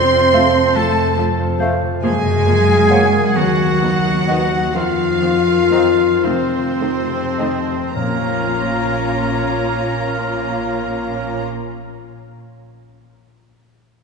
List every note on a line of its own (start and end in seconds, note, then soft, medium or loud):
0.00 0.60 F2 medium
0.00 2.06 F2 medium
0.00 1.80 C3 soft
0.00 0.73 C4 medium
0.00 1.59 C4 soft
0.00 0.53 C5 soft
0.00 0.76 C5 medium
0.00 0.78 C5 medium
0.00 0.72 C6 medium
0.00 0.76 C6 medium
0.13 1.38 F4 soft
0.33 0.41 F3 soft
0.33 0.41 A3 soft
0.33 0.48 A3 medium
0.33 0.73 A4 soft
0.33 0.48 C5 medium
0.33 0.53 F5 medium
0.54 0.95 C5 soft
0.75 1.88 F2 medium
0.75 0.84 F3 soft
0.75 1.17 A3 medium
0.75 0.84 A3 soft
0.75 1.16 A4 soft
0.75 1.17 A4 medium
0.75 1.18 A4 medium
0.75 1.16 A5 medium
0.75 1.18 A5 medium
0.97 2.07 C5 soft
1.17 1.25 F3 soft
1.17 1.25 A3 soft
1.17 2.07 A4 soft
1.39 2.66 F4 soft
1.59 1.67 F3 soft
1.59 1.68 A3 soft
1.59 1.76 A3 medium
1.59 2.06 C4 soft
1.59 1.75 C5 medium
1.59 1.80 F5 medium
1.81 2.06 C3 soft
2.02 3.39 F#2 medium
2.02 3.20 F#2 medium
2.02 2.11 F3 medium
2.02 3.32 G#3 medium
2.02 2.11 A#3 medium
2.02 3.37 G#4 medium
2.02 3.32 G#4 medium
2.02 3.31 G#5 medium
2.02 3.32 G#5 medium
2.25 3.39 C#3 soft
2.46 2.54 F3 soft
2.46 2.54 A#3 soft
2.46 3.39 A#3 soft
2.67 3.39 F4 soft
2.89 2.99 F3 soft
2.89 3.06 A#3 medium
2.89 2.99 A#3 soft
2.89 3.39 C#5 soft
2.89 3.06 C#5 medium
2.89 3.11 F#5 medium
3.13 3.39 A#4 soft
3.35 4.58 D#2 medium
3.35 4.78 D#3 medium
3.35 3.44 D#3 soft
3.35 4.75 F#3 medium
3.35 3.44 B3 soft
3.35 4.75 F#4 medium
3.35 4.74 F#5 medium
3.35 4.72 F#5 medium
3.59 4.78 B3 soft
3.81 3.90 D#3 soft
3.81 3.90 B3 soft
3.81 5.21 D#4 soft
4.04 4.50 D#5 soft
4.27 4.37 D#3 soft
4.27 4.37 B3 soft
4.27 4.45 B3 medium
4.27 4.78 B4 soft
4.27 4.44 D#5 soft
4.27 4.49 F#5 medium
4.51 5.97 D#5 soft
4.74 6.06 F2 medium
4.74 4.84 D#3 soft
4.74 6.23 F3 soft
4.74 6.22 F3 medium
4.74 4.83 C4 soft
4.74 6.21 F4 medium
4.74 6.26 F4 medium
4.74 6.21 F5 medium
4.74 6.25 F5 medium
4.98 6.51 C4 soft
5.22 5.30 D#3 soft
5.22 5.30 C4 soft
5.22 6.79 D#4 soft
5.47 6.29 A#4 soft
5.71 5.79 D#3 soft
5.71 5.79 C4 soft
5.71 5.90 C4 soft
5.71 7.37 C5 soft
5.71 5.90 D#5 soft
5.71 5.96 A#5 soft
5.98 7.66 D#5 soft
6.24 7.77 F2 soft
6.24 7.96 C3 soft
6.24 6.33 D#3 soft
6.24 10.15 F3 soft
6.24 6.33 A3 soft
6.24 7.94 C4 medium
6.24 7.96 C4 medium
6.24 7.92 C5 medium
6.24 7.96 C5 medium
6.52 8.00 C4 soft
6.80 6.89 D#3 soft
6.80 6.89 A3 soft
6.80 8.00 D#4 soft
7.09 8.00 A4 soft
7.38 7.48 D#3 soft
7.38 7.47 A3 soft
7.38 7.60 C4 soft
7.38 8.00 C5 soft
7.38 7.59 D#5 soft
7.38 7.66 A5 soft
7.67 7.99 D#5 soft
7.95 11.45 A#1 soft
7.95 11.85 A#2 soft
7.95 11.46 A#2 soft
7.95 11.44 A#3 soft
7.95 11.45 A#3 soft
7.95 11.45 C#4 soft
7.95 11.45 F4 soft
7.95 11.44 A#4 soft
7.95 11.44 C#5 soft
7.95 11.44 A#5 soft
7.95 11.45 A#5 soft
7.95 11.46 A#5 soft
8.01 11.50 A#3 soft
8.09 11.58 C#4 soft
8.16 11.65 F4 soft
8.23 11.72 A#4 soft
8.29 11.79 F5 soft